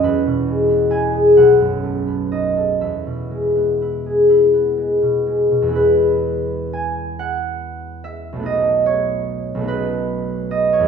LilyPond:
<<
  \new Staff \with { instrumentName = "Harp" } { \time 6/8 \key e \major \tempo 4. = 44 b'4 gis''8 fis''4 dis''8 | e''2. | b'4 gis''8 fis''4 e''8 | dis''8 cis''4 b'4 dis''16 cis''16 | }
  \new Staff \with { instrumentName = "Harp" } { \time 6/8 \key e \major <e, b>16 b,16 gis16 b16 e'16 gis'16 b,,16 fis,16 a16 b16 dis'16 a'16 | e,16 b,16 gis16 b16 e'16 gis'16 e'16 b16 gis16 b,16 gis16 b,16 | <e, gis b e'>2. | <b,, a b dis'>4. <b,, a b dis'>4. | }
>>